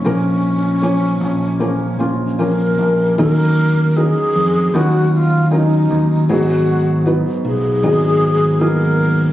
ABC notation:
X:1
M:4/4
L:1/16
Q:1/4=78
K:Ebm
V:1 name="Alto flute"
D12 B4 | B4 A4 G2 F2 E4 | G4 z2 A6 B4 |]
V:2 name="Felt piano"
[F,B,DB]4 [F,B,Dd]4 [F,B,DB]2 [F,B,DF]2 [F,B,DB]4 | [G,DEB]4 [DEGB]4 [G,DEB]4 [G,DEB]4 | [G,CEA]4 [G,CEc]4 [G,CEA]4 [G,B,CEA]4 |]
V:3 name="Felt piano" clef=bass
B,,6 z8 z2 | E,6 z8 z2 | A,,6 z8 z2 |]
V:4 name="Fingered electric bass" clef=bass
B,,,6 B,,,4 B,,,4 B,,,2 | E,,4- E,, z F,,2 E,,6 E,,2 | A,,,4- A,,, z C,,2 A,,,8 |]